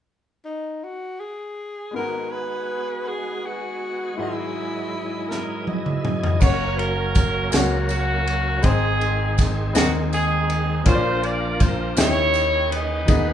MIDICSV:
0, 0, Header, 1, 8, 480
1, 0, Start_track
1, 0, Key_signature, 5, "minor"
1, 0, Tempo, 743494
1, 1259, Time_signature, 6, 3, 24, 8
1, 8606, End_track
2, 0, Start_track
2, 0, Title_t, "Tenor saxophone"
2, 0, Program_c, 0, 66
2, 291, Note_on_c, 0, 63, 57
2, 542, Note_on_c, 0, 66, 54
2, 551, Note_off_c, 0, 63, 0
2, 774, Note_on_c, 0, 68, 64
2, 783, Note_off_c, 0, 66, 0
2, 1257, Note_off_c, 0, 68, 0
2, 1265, Note_on_c, 0, 70, 67
2, 1496, Note_on_c, 0, 71, 70
2, 1506, Note_off_c, 0, 70, 0
2, 1989, Note_on_c, 0, 68, 67
2, 1999, Note_off_c, 0, 71, 0
2, 2233, Note_on_c, 0, 66, 66
2, 2242, Note_off_c, 0, 68, 0
2, 2712, Note_on_c, 0, 64, 69
2, 2721, Note_off_c, 0, 66, 0
2, 3908, Note_off_c, 0, 64, 0
2, 8606, End_track
3, 0, Start_track
3, 0, Title_t, "Horn section"
3, 0, Program_c, 1, 61
3, 3415, Note_on_c, 1, 70, 67
3, 3642, Note_off_c, 1, 70, 0
3, 3656, Note_on_c, 1, 64, 53
3, 3657, Note_on_c, 1, 71, 75
3, 3660, Note_on_c, 1, 75, 69
3, 4114, Note_off_c, 1, 64, 0
3, 4116, Note_off_c, 1, 75, 0
3, 4135, Note_on_c, 1, 73, 101
3, 4140, Note_off_c, 1, 71, 0
3, 4144, Note_on_c, 1, 66, 66
3, 4145, Note_on_c, 1, 70, 77
3, 4369, Note_off_c, 1, 70, 0
3, 4371, Note_off_c, 1, 66, 0
3, 4376, Note_on_c, 1, 70, 96
3, 4378, Note_on_c, 1, 61, 70
3, 4379, Note_off_c, 1, 73, 0
3, 4379, Note_on_c, 1, 66, 73
3, 4843, Note_off_c, 1, 66, 0
3, 4851, Note_on_c, 1, 66, 93
3, 4859, Note_off_c, 1, 70, 0
3, 5073, Note_off_c, 1, 61, 0
3, 5092, Note_off_c, 1, 66, 0
3, 5099, Note_on_c, 1, 66, 98
3, 5106, Note_on_c, 1, 58, 70
3, 5108, Note_on_c, 1, 61, 65
3, 5553, Note_off_c, 1, 66, 0
3, 5556, Note_off_c, 1, 58, 0
3, 5558, Note_off_c, 1, 61, 0
3, 5578, Note_on_c, 1, 68, 105
3, 5591, Note_on_c, 1, 60, 78
3, 5592, Note_on_c, 1, 63, 78
3, 6096, Note_off_c, 1, 68, 0
3, 6277, Note_off_c, 1, 60, 0
3, 6278, Note_off_c, 1, 63, 0
3, 6293, Note_on_c, 1, 66, 83
3, 6397, Note_off_c, 1, 66, 0
3, 6545, Note_on_c, 1, 68, 106
3, 6554, Note_on_c, 1, 60, 76
3, 6557, Note_on_c, 1, 63, 71
3, 6993, Note_off_c, 1, 68, 0
3, 6998, Note_off_c, 1, 60, 0
3, 6999, Note_off_c, 1, 63, 0
3, 7019, Note_on_c, 1, 72, 113
3, 7032, Note_on_c, 1, 65, 77
3, 7256, Note_off_c, 1, 72, 0
3, 7257, Note_on_c, 1, 74, 102
3, 7494, Note_off_c, 1, 74, 0
3, 7494, Note_on_c, 1, 72, 97
3, 7714, Note_off_c, 1, 65, 0
3, 7732, Note_off_c, 1, 72, 0
3, 7742, Note_on_c, 1, 73, 114
3, 7755, Note_on_c, 1, 64, 80
3, 7757, Note_on_c, 1, 67, 76
3, 8189, Note_off_c, 1, 73, 0
3, 8207, Note_on_c, 1, 71, 108
3, 8219, Note_on_c, 1, 68, 78
3, 8221, Note_on_c, 1, 63, 78
3, 8434, Note_off_c, 1, 64, 0
3, 8436, Note_off_c, 1, 67, 0
3, 8606, Note_off_c, 1, 63, 0
3, 8606, Note_off_c, 1, 68, 0
3, 8606, Note_off_c, 1, 71, 0
3, 8606, End_track
4, 0, Start_track
4, 0, Title_t, "String section"
4, 0, Program_c, 2, 48
4, 1241, Note_on_c, 2, 66, 47
4, 1242, Note_on_c, 2, 59, 48
4, 1242, Note_on_c, 2, 68, 44
4, 2680, Note_off_c, 2, 59, 0
4, 2696, Note_on_c, 2, 64, 45
4, 2698, Note_on_c, 2, 75, 47
4, 2703, Note_on_c, 2, 56, 50
4, 4108, Note_off_c, 2, 66, 0
4, 4109, Note_off_c, 2, 68, 0
4, 4125, Note_off_c, 2, 64, 0
4, 4126, Note_off_c, 2, 75, 0
4, 4129, Note_off_c, 2, 56, 0
4, 8606, End_track
5, 0, Start_track
5, 0, Title_t, "Tonewheel organ"
5, 0, Program_c, 3, 16
5, 1271, Note_on_c, 3, 59, 39
5, 1272, Note_on_c, 3, 66, 38
5, 1273, Note_on_c, 3, 68, 47
5, 1276, Note_on_c, 3, 56, 43
5, 2683, Note_off_c, 3, 59, 0
5, 2683, Note_off_c, 3, 66, 0
5, 2684, Note_off_c, 3, 68, 0
5, 2685, Note_off_c, 3, 56, 0
5, 2701, Note_on_c, 3, 54, 41
5, 2704, Note_on_c, 3, 44, 46
5, 2704, Note_on_c, 3, 68, 49
5, 2705, Note_on_c, 3, 75, 41
5, 2707, Note_on_c, 3, 64, 40
5, 3670, Note_off_c, 3, 75, 0
5, 3678, Note_on_c, 3, 75, 52
5, 3777, Note_on_c, 3, 76, 52
5, 3783, Note_off_c, 3, 75, 0
5, 3892, Note_off_c, 3, 76, 0
5, 3906, Note_on_c, 3, 80, 51
5, 4117, Note_off_c, 3, 54, 0
5, 4118, Note_off_c, 3, 44, 0
5, 4118, Note_off_c, 3, 68, 0
5, 4119, Note_off_c, 3, 64, 0
5, 4128, Note_off_c, 3, 80, 0
5, 4137, Note_on_c, 3, 54, 65
5, 4137, Note_on_c, 3, 58, 55
5, 4138, Note_on_c, 3, 61, 56
5, 4141, Note_on_c, 3, 69, 52
5, 4180, Note_on_c, 3, 70, 71
5, 4184, Note_off_c, 3, 69, 0
5, 5551, Note_off_c, 3, 54, 0
5, 5551, Note_off_c, 3, 58, 0
5, 5552, Note_off_c, 3, 61, 0
5, 5572, Note_on_c, 3, 51, 68
5, 5573, Note_off_c, 3, 70, 0
5, 5573, Note_on_c, 3, 56, 61
5, 5574, Note_on_c, 3, 60, 60
5, 5575, Note_on_c, 3, 68, 72
5, 6985, Note_off_c, 3, 51, 0
5, 6985, Note_off_c, 3, 56, 0
5, 6986, Note_off_c, 3, 60, 0
5, 6986, Note_off_c, 3, 68, 0
5, 7007, Note_on_c, 3, 53, 67
5, 7009, Note_on_c, 3, 58, 61
5, 7010, Note_on_c, 3, 70, 76
5, 7011, Note_on_c, 3, 62, 56
5, 7728, Note_off_c, 3, 53, 0
5, 7729, Note_off_c, 3, 58, 0
5, 7729, Note_off_c, 3, 70, 0
5, 7730, Note_off_c, 3, 62, 0
5, 7730, Note_on_c, 3, 75, 54
5, 7731, Note_on_c, 3, 61, 52
5, 7732, Note_on_c, 3, 51, 59
5, 7740, Note_on_c, 3, 79, 63
5, 8448, Note_off_c, 3, 61, 0
5, 8448, Note_off_c, 3, 75, 0
5, 8449, Note_off_c, 3, 51, 0
5, 8450, Note_on_c, 3, 63, 56
5, 8453, Note_off_c, 3, 79, 0
5, 8454, Note_on_c, 3, 56, 69
5, 8455, Note_on_c, 3, 59, 63
5, 8456, Note_on_c, 3, 71, 70
5, 8606, Note_off_c, 3, 56, 0
5, 8606, Note_off_c, 3, 59, 0
5, 8606, Note_off_c, 3, 63, 0
5, 8606, Note_off_c, 3, 71, 0
5, 8606, End_track
6, 0, Start_track
6, 0, Title_t, "Upright piano"
6, 0, Program_c, 4, 0
6, 1233, Note_on_c, 4, 56, 40
6, 1248, Note_on_c, 4, 59, 35
6, 1254, Note_on_c, 4, 44, 37
6, 1259, Note_on_c, 4, 32, 36
6, 1267, Note_on_c, 4, 66, 36
6, 1282, Note_on_c, 4, 82, 44
6, 1399, Control_c, 4, 64, 127
6, 2661, Note_off_c, 4, 56, 0
6, 2671, Note_on_c, 4, 56, 40
6, 2672, Note_off_c, 4, 59, 0
6, 2675, Note_off_c, 4, 44, 0
6, 2677, Note_off_c, 4, 32, 0
6, 2681, Note_off_c, 4, 66, 0
6, 2687, Note_on_c, 4, 64, 38
6, 2689, Note_off_c, 4, 82, 0
6, 2694, Note_on_c, 4, 44, 37
6, 2698, Note_on_c, 4, 32, 44
6, 2705, Note_on_c, 4, 66, 39
6, 2710, Control_c, 4, 64, 0
6, 2722, Note_on_c, 4, 75, 46
6, 2822, Control_c, 4, 64, 127
6, 4101, Note_off_c, 4, 56, 0
6, 4109, Note_off_c, 4, 64, 0
6, 4113, Note_off_c, 4, 44, 0
6, 4115, Note_off_c, 4, 32, 0
6, 4118, Note_off_c, 4, 66, 0
6, 4127, Note_off_c, 4, 75, 0
6, 4129, Note_on_c, 4, 58, 66
6, 4134, Note_on_c, 4, 61, 64
6, 4145, Note_on_c, 4, 66, 65
6, 4151, Control_c, 4, 64, 0
6, 4153, Note_on_c, 4, 73, 84
6, 4262, Control_c, 4, 64, 127
6, 4594, Note_off_c, 4, 58, 0
6, 4596, Note_off_c, 4, 61, 0
6, 4602, Note_off_c, 4, 66, 0
6, 4606, Note_off_c, 4, 73, 0
6, 4851, Note_on_c, 4, 56, 51
6, 4857, Note_on_c, 4, 61, 57
6, 4865, Note_on_c, 4, 66, 60
6, 4875, Note_on_c, 4, 73, 73
6, 4891, Note_on_c, 4, 58, 63
6, 4898, Note_off_c, 4, 56, 0
6, 5317, Note_off_c, 4, 61, 0
6, 5321, Note_off_c, 4, 66, 0
6, 5326, Note_off_c, 4, 73, 0
6, 5334, Note_off_c, 4, 58, 0
6, 5563, Note_on_c, 4, 56, 75
6, 5572, Note_on_c, 4, 60, 62
6, 5578, Note_on_c, 4, 44, 58
6, 5580, Note_on_c, 4, 63, 67
6, 5589, Control_c, 4, 64, 0
6, 5589, Note_on_c, 4, 72, 83
6, 5712, Control_c, 4, 64, 127
6, 6029, Note_off_c, 4, 56, 0
6, 6033, Note_off_c, 4, 60, 0
6, 6037, Note_off_c, 4, 63, 0
6, 6042, Note_off_c, 4, 72, 0
6, 6271, Note_off_c, 4, 44, 0
6, 6282, Note_on_c, 4, 56, 66
6, 6288, Note_on_c, 4, 60, 65
6, 6294, Note_on_c, 4, 63, 62
6, 6306, Note_on_c, 4, 70, 69
6, 6747, Note_off_c, 4, 56, 0
6, 6750, Note_off_c, 4, 60, 0
6, 6753, Note_off_c, 4, 63, 0
6, 6759, Note_off_c, 4, 70, 0
6, 6998, Note_on_c, 4, 58, 73
6, 7007, Note_on_c, 4, 62, 68
6, 7014, Note_on_c, 4, 46, 56
6, 7017, Note_on_c, 4, 65, 67
6, 7023, Control_c, 4, 64, 0
6, 7024, Note_on_c, 4, 73, 62
6, 7061, Note_off_c, 4, 73, 0
6, 7068, Note_on_c, 4, 74, 77
6, 7147, Control_c, 4, 64, 127
6, 7463, Note_off_c, 4, 58, 0
6, 7468, Note_off_c, 4, 62, 0
6, 7473, Note_off_c, 4, 65, 0
6, 7498, Note_off_c, 4, 74, 0
6, 7705, Note_off_c, 4, 46, 0
6, 7722, Note_on_c, 4, 61, 65
6, 7727, Note_on_c, 4, 64, 59
6, 7733, Note_on_c, 4, 51, 63
6, 7735, Note_on_c, 4, 67, 61
6, 7741, Control_c, 4, 64, 0
6, 7746, Note_on_c, 4, 75, 71
6, 7868, Control_c, 4, 64, 127
6, 8184, Note_off_c, 4, 61, 0
6, 8186, Note_off_c, 4, 64, 0
6, 8190, Note_off_c, 4, 67, 0
6, 8196, Note_off_c, 4, 75, 0
6, 8423, Note_off_c, 4, 51, 0
6, 8428, Note_on_c, 4, 58, 59
6, 8435, Note_on_c, 4, 63, 60
6, 8443, Note_on_c, 4, 51, 59
6, 8446, Note_on_c, 4, 68, 65
6, 8454, Note_on_c, 4, 75, 76
6, 8455, Control_c, 4, 64, 0
6, 8472, Note_on_c, 4, 59, 72
6, 8480, Note_off_c, 4, 58, 0
6, 8580, Control_c, 4, 64, 127
6, 8606, Note_off_c, 4, 51, 0
6, 8606, Note_off_c, 4, 59, 0
6, 8606, Note_off_c, 4, 63, 0
6, 8606, Note_off_c, 4, 68, 0
6, 8606, Note_off_c, 4, 75, 0
6, 8606, End_track
7, 0, Start_track
7, 0, Title_t, "Fingered electric bass"
7, 0, Program_c, 5, 33
7, 4141, Note_on_c, 5, 30, 92
7, 4835, Note_off_c, 5, 30, 0
7, 4862, Note_on_c, 5, 37, 81
7, 5554, Note_off_c, 5, 37, 0
7, 5576, Note_on_c, 5, 32, 100
7, 6270, Note_off_c, 5, 32, 0
7, 6298, Note_on_c, 5, 39, 93
7, 6989, Note_off_c, 5, 39, 0
7, 7009, Note_on_c, 5, 34, 99
7, 7703, Note_off_c, 5, 34, 0
7, 7733, Note_on_c, 5, 39, 87
7, 8423, Note_off_c, 5, 39, 0
7, 8449, Note_on_c, 5, 39, 93
7, 8606, Note_off_c, 5, 39, 0
7, 8606, End_track
8, 0, Start_track
8, 0, Title_t, "Drums"
8, 3429, Note_on_c, 9, 38, 39
8, 3494, Note_off_c, 9, 38, 0
8, 3662, Note_on_c, 9, 48, 52
8, 3727, Note_off_c, 9, 48, 0
8, 3783, Note_on_c, 9, 47, 49
8, 3848, Note_off_c, 9, 47, 0
8, 3904, Note_on_c, 9, 45, 65
8, 3968, Note_off_c, 9, 45, 0
8, 4025, Note_on_c, 9, 43, 61
8, 4090, Note_off_c, 9, 43, 0
8, 4136, Note_on_c, 9, 54, 55
8, 4143, Note_on_c, 9, 36, 105
8, 4146, Note_on_c, 9, 49, 79
8, 4200, Note_off_c, 9, 54, 0
8, 4208, Note_off_c, 9, 36, 0
8, 4211, Note_off_c, 9, 49, 0
8, 4384, Note_on_c, 9, 53, 50
8, 4449, Note_off_c, 9, 53, 0
8, 4615, Note_on_c, 9, 54, 59
8, 4618, Note_on_c, 9, 53, 65
8, 4622, Note_on_c, 9, 36, 82
8, 4680, Note_off_c, 9, 54, 0
8, 4682, Note_off_c, 9, 53, 0
8, 4686, Note_off_c, 9, 36, 0
8, 4854, Note_on_c, 9, 54, 95
8, 4860, Note_on_c, 9, 53, 75
8, 4868, Note_on_c, 9, 38, 86
8, 4919, Note_off_c, 9, 54, 0
8, 4924, Note_off_c, 9, 53, 0
8, 4933, Note_off_c, 9, 38, 0
8, 5093, Note_on_c, 9, 54, 55
8, 5102, Note_on_c, 9, 53, 39
8, 5157, Note_off_c, 9, 54, 0
8, 5167, Note_off_c, 9, 53, 0
8, 5341, Note_on_c, 9, 53, 60
8, 5406, Note_off_c, 9, 53, 0
8, 5569, Note_on_c, 9, 54, 58
8, 5576, Note_on_c, 9, 53, 68
8, 5578, Note_on_c, 9, 36, 102
8, 5634, Note_off_c, 9, 54, 0
8, 5641, Note_off_c, 9, 53, 0
8, 5642, Note_off_c, 9, 36, 0
8, 5818, Note_on_c, 9, 53, 47
8, 5883, Note_off_c, 9, 53, 0
8, 6054, Note_on_c, 9, 54, 57
8, 6059, Note_on_c, 9, 53, 68
8, 6060, Note_on_c, 9, 36, 82
8, 6070, Note_on_c, 9, 38, 34
8, 6118, Note_off_c, 9, 54, 0
8, 6124, Note_off_c, 9, 53, 0
8, 6125, Note_off_c, 9, 36, 0
8, 6135, Note_off_c, 9, 38, 0
8, 6294, Note_on_c, 9, 54, 95
8, 6296, Note_on_c, 9, 53, 72
8, 6304, Note_on_c, 9, 38, 96
8, 6359, Note_off_c, 9, 54, 0
8, 6360, Note_off_c, 9, 53, 0
8, 6369, Note_off_c, 9, 38, 0
8, 6537, Note_on_c, 9, 54, 54
8, 6539, Note_on_c, 9, 53, 40
8, 6602, Note_off_c, 9, 54, 0
8, 6603, Note_off_c, 9, 53, 0
8, 6776, Note_on_c, 9, 53, 61
8, 6841, Note_off_c, 9, 53, 0
8, 7008, Note_on_c, 9, 53, 72
8, 7009, Note_on_c, 9, 54, 58
8, 7013, Note_on_c, 9, 36, 102
8, 7072, Note_off_c, 9, 53, 0
8, 7074, Note_off_c, 9, 54, 0
8, 7077, Note_off_c, 9, 36, 0
8, 7252, Note_on_c, 9, 53, 46
8, 7317, Note_off_c, 9, 53, 0
8, 7489, Note_on_c, 9, 53, 62
8, 7490, Note_on_c, 9, 54, 58
8, 7494, Note_on_c, 9, 36, 87
8, 7554, Note_off_c, 9, 53, 0
8, 7554, Note_off_c, 9, 54, 0
8, 7559, Note_off_c, 9, 36, 0
8, 7726, Note_on_c, 9, 54, 93
8, 7728, Note_on_c, 9, 53, 76
8, 7737, Note_on_c, 9, 38, 88
8, 7790, Note_off_c, 9, 54, 0
8, 7793, Note_off_c, 9, 53, 0
8, 7801, Note_off_c, 9, 38, 0
8, 7965, Note_on_c, 9, 54, 55
8, 7975, Note_on_c, 9, 53, 40
8, 8030, Note_off_c, 9, 54, 0
8, 8039, Note_off_c, 9, 53, 0
8, 8213, Note_on_c, 9, 53, 63
8, 8277, Note_off_c, 9, 53, 0
8, 8444, Note_on_c, 9, 53, 72
8, 8444, Note_on_c, 9, 54, 57
8, 8448, Note_on_c, 9, 36, 102
8, 8508, Note_off_c, 9, 54, 0
8, 8509, Note_off_c, 9, 53, 0
8, 8513, Note_off_c, 9, 36, 0
8, 8606, End_track
0, 0, End_of_file